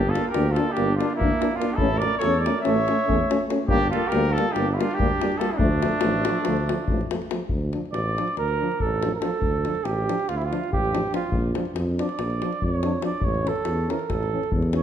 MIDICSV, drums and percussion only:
0, 0, Header, 1, 2, 480
1, 0, Start_track
1, 0, Key_signature, -1, "minor"
1, 0, Tempo, 422535
1, 2035, Time_signature, 9, 3, 24, 8
1, 16845, End_track
2, 0, Start_track
2, 0, Title_t, "Davul"
2, 176, Note_on_c, 9, 37, 73
2, 289, Note_off_c, 9, 37, 0
2, 391, Note_on_c, 9, 37, 74
2, 504, Note_off_c, 9, 37, 0
2, 641, Note_on_c, 9, 37, 65
2, 754, Note_off_c, 9, 37, 0
2, 871, Note_on_c, 9, 37, 55
2, 984, Note_off_c, 9, 37, 0
2, 1142, Note_on_c, 9, 37, 67
2, 1250, Note_off_c, 9, 37, 0
2, 1250, Note_on_c, 9, 37, 21
2, 1364, Note_off_c, 9, 37, 0
2, 1378, Note_on_c, 9, 43, 86
2, 1491, Note_off_c, 9, 43, 0
2, 1610, Note_on_c, 9, 37, 68
2, 1720, Note_off_c, 9, 37, 0
2, 1720, Note_on_c, 9, 37, 21
2, 1834, Note_off_c, 9, 37, 0
2, 1836, Note_on_c, 9, 37, 65
2, 1949, Note_off_c, 9, 37, 0
2, 2025, Note_on_c, 9, 43, 78
2, 2138, Note_off_c, 9, 43, 0
2, 2292, Note_on_c, 9, 37, 59
2, 2405, Note_off_c, 9, 37, 0
2, 2516, Note_on_c, 9, 37, 70
2, 2630, Note_off_c, 9, 37, 0
2, 2663, Note_on_c, 9, 37, 24
2, 2776, Note_off_c, 9, 37, 0
2, 2795, Note_on_c, 9, 37, 70
2, 2908, Note_off_c, 9, 37, 0
2, 3012, Note_on_c, 9, 37, 60
2, 3125, Note_off_c, 9, 37, 0
2, 3271, Note_on_c, 9, 37, 54
2, 3384, Note_off_c, 9, 37, 0
2, 3399, Note_on_c, 9, 37, 22
2, 3512, Note_off_c, 9, 37, 0
2, 3513, Note_on_c, 9, 43, 67
2, 3627, Note_off_c, 9, 43, 0
2, 3758, Note_on_c, 9, 37, 69
2, 3867, Note_off_c, 9, 37, 0
2, 3867, Note_on_c, 9, 37, 20
2, 3980, Note_off_c, 9, 37, 0
2, 3980, Note_on_c, 9, 37, 71
2, 4094, Note_off_c, 9, 37, 0
2, 4186, Note_on_c, 9, 43, 93
2, 4299, Note_off_c, 9, 43, 0
2, 4465, Note_on_c, 9, 37, 54
2, 4578, Note_off_c, 9, 37, 0
2, 4680, Note_on_c, 9, 37, 71
2, 4793, Note_off_c, 9, 37, 0
2, 4831, Note_on_c, 9, 37, 27
2, 4945, Note_off_c, 9, 37, 0
2, 4974, Note_on_c, 9, 37, 73
2, 5087, Note_off_c, 9, 37, 0
2, 5179, Note_on_c, 9, 37, 64
2, 5292, Note_off_c, 9, 37, 0
2, 5459, Note_on_c, 9, 37, 72
2, 5573, Note_off_c, 9, 37, 0
2, 5577, Note_on_c, 9, 37, 28
2, 5677, Note_on_c, 9, 43, 90
2, 5691, Note_off_c, 9, 37, 0
2, 5791, Note_off_c, 9, 43, 0
2, 5924, Note_on_c, 9, 37, 76
2, 6038, Note_off_c, 9, 37, 0
2, 6041, Note_on_c, 9, 37, 28
2, 6147, Note_off_c, 9, 37, 0
2, 6147, Note_on_c, 9, 37, 75
2, 6261, Note_off_c, 9, 37, 0
2, 6353, Note_on_c, 9, 43, 93
2, 6466, Note_off_c, 9, 43, 0
2, 6617, Note_on_c, 9, 37, 80
2, 6722, Note_off_c, 9, 37, 0
2, 6722, Note_on_c, 9, 37, 27
2, 6824, Note_off_c, 9, 37, 0
2, 6824, Note_on_c, 9, 37, 88
2, 6938, Note_off_c, 9, 37, 0
2, 7098, Note_on_c, 9, 37, 88
2, 7212, Note_off_c, 9, 37, 0
2, 7325, Note_on_c, 9, 37, 74
2, 7439, Note_off_c, 9, 37, 0
2, 7459, Note_on_c, 9, 37, 31
2, 7573, Note_off_c, 9, 37, 0
2, 7602, Note_on_c, 9, 37, 70
2, 7716, Note_off_c, 9, 37, 0
2, 7814, Note_on_c, 9, 43, 78
2, 7927, Note_off_c, 9, 43, 0
2, 7960, Note_on_c, 9, 37, 25
2, 8073, Note_off_c, 9, 37, 0
2, 8076, Note_on_c, 9, 37, 77
2, 8190, Note_off_c, 9, 37, 0
2, 8198, Note_on_c, 9, 37, 29
2, 8303, Note_off_c, 9, 37, 0
2, 8303, Note_on_c, 9, 37, 75
2, 8416, Note_off_c, 9, 37, 0
2, 8512, Note_on_c, 9, 43, 72
2, 8625, Note_off_c, 9, 43, 0
2, 8780, Note_on_c, 9, 37, 45
2, 8893, Note_off_c, 9, 37, 0
2, 8923, Note_on_c, 9, 37, 19
2, 9022, Note_off_c, 9, 37, 0
2, 9022, Note_on_c, 9, 37, 58
2, 9135, Note_off_c, 9, 37, 0
2, 9295, Note_on_c, 9, 37, 57
2, 9402, Note_off_c, 9, 37, 0
2, 9402, Note_on_c, 9, 37, 23
2, 9510, Note_off_c, 9, 37, 0
2, 9510, Note_on_c, 9, 37, 48
2, 9624, Note_off_c, 9, 37, 0
2, 9633, Note_on_c, 9, 37, 22
2, 9746, Note_off_c, 9, 37, 0
2, 9902, Note_on_c, 9, 37, 23
2, 9998, Note_on_c, 9, 43, 60
2, 10015, Note_off_c, 9, 37, 0
2, 10111, Note_off_c, 9, 43, 0
2, 10253, Note_on_c, 9, 37, 71
2, 10366, Note_off_c, 9, 37, 0
2, 10472, Note_on_c, 9, 37, 74
2, 10586, Note_off_c, 9, 37, 0
2, 10698, Note_on_c, 9, 43, 73
2, 10812, Note_off_c, 9, 43, 0
2, 10961, Note_on_c, 9, 37, 54
2, 11074, Note_off_c, 9, 37, 0
2, 11076, Note_on_c, 9, 37, 23
2, 11189, Note_off_c, 9, 37, 0
2, 11194, Note_on_c, 9, 37, 60
2, 11307, Note_off_c, 9, 37, 0
2, 11467, Note_on_c, 9, 37, 63
2, 11581, Note_off_c, 9, 37, 0
2, 11581, Note_on_c, 9, 37, 25
2, 11689, Note_off_c, 9, 37, 0
2, 11689, Note_on_c, 9, 37, 54
2, 11803, Note_off_c, 9, 37, 0
2, 11833, Note_on_c, 9, 37, 27
2, 11947, Note_off_c, 9, 37, 0
2, 11958, Note_on_c, 9, 37, 57
2, 12071, Note_off_c, 9, 37, 0
2, 12082, Note_on_c, 9, 37, 22
2, 12191, Note_on_c, 9, 43, 83
2, 12196, Note_off_c, 9, 37, 0
2, 12304, Note_off_c, 9, 43, 0
2, 12325, Note_on_c, 9, 37, 22
2, 12435, Note_off_c, 9, 37, 0
2, 12435, Note_on_c, 9, 37, 65
2, 12548, Note_off_c, 9, 37, 0
2, 12655, Note_on_c, 9, 37, 70
2, 12769, Note_off_c, 9, 37, 0
2, 12861, Note_on_c, 9, 43, 87
2, 12975, Note_off_c, 9, 43, 0
2, 13122, Note_on_c, 9, 37, 67
2, 13236, Note_off_c, 9, 37, 0
2, 13239, Note_on_c, 9, 37, 21
2, 13352, Note_off_c, 9, 37, 0
2, 13357, Note_on_c, 9, 37, 71
2, 13471, Note_off_c, 9, 37, 0
2, 13623, Note_on_c, 9, 37, 62
2, 13734, Note_off_c, 9, 37, 0
2, 13734, Note_on_c, 9, 37, 28
2, 13845, Note_off_c, 9, 37, 0
2, 13845, Note_on_c, 9, 37, 63
2, 13958, Note_off_c, 9, 37, 0
2, 13975, Note_on_c, 9, 37, 23
2, 14088, Note_off_c, 9, 37, 0
2, 14107, Note_on_c, 9, 37, 57
2, 14221, Note_off_c, 9, 37, 0
2, 14229, Note_on_c, 9, 37, 25
2, 14336, Note_on_c, 9, 43, 59
2, 14343, Note_off_c, 9, 37, 0
2, 14450, Note_off_c, 9, 43, 0
2, 14574, Note_on_c, 9, 37, 64
2, 14688, Note_off_c, 9, 37, 0
2, 14795, Note_on_c, 9, 37, 74
2, 14909, Note_off_c, 9, 37, 0
2, 15012, Note_on_c, 9, 43, 81
2, 15126, Note_off_c, 9, 43, 0
2, 15162, Note_on_c, 9, 37, 22
2, 15275, Note_off_c, 9, 37, 0
2, 15300, Note_on_c, 9, 37, 62
2, 15400, Note_off_c, 9, 37, 0
2, 15400, Note_on_c, 9, 37, 21
2, 15507, Note_off_c, 9, 37, 0
2, 15507, Note_on_c, 9, 37, 66
2, 15621, Note_off_c, 9, 37, 0
2, 15791, Note_on_c, 9, 37, 66
2, 15896, Note_off_c, 9, 37, 0
2, 15896, Note_on_c, 9, 37, 23
2, 16010, Note_off_c, 9, 37, 0
2, 16015, Note_on_c, 9, 37, 58
2, 16015, Note_on_c, 9, 43, 55
2, 16128, Note_off_c, 9, 37, 0
2, 16128, Note_off_c, 9, 43, 0
2, 16163, Note_on_c, 9, 37, 22
2, 16277, Note_off_c, 9, 37, 0
2, 16396, Note_on_c, 9, 37, 26
2, 16493, Note_on_c, 9, 43, 78
2, 16510, Note_off_c, 9, 37, 0
2, 16607, Note_off_c, 9, 43, 0
2, 16613, Note_on_c, 9, 37, 29
2, 16727, Note_off_c, 9, 37, 0
2, 16734, Note_on_c, 9, 37, 63
2, 16845, Note_off_c, 9, 37, 0
2, 16845, End_track
0, 0, End_of_file